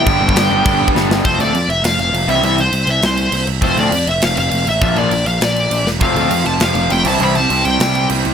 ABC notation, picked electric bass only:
X:1
M:4/4
L:1/8
Q:1/4=201
K:Flyd
V:1 name="Picked electric bass" clef=bass
G,,, G,,, G,,, G,,, G,,,2 G,,, G,,, | F,,, D,, F,, F,,, F,,, F,,, F,,, C,, | C,,2 C,, C,, C,,2 C,, C,, | F,,, D,, F,, F,,, F,,, F,,, F,,, A,,, |
_B,,,2 B,,, B,,, B,,,2 B,,, E,,, | F,,, D,, F,, F,,, F,,, F,,, F,,, C,, | C,,2 C,, C,, C,,2 C,, C,, |]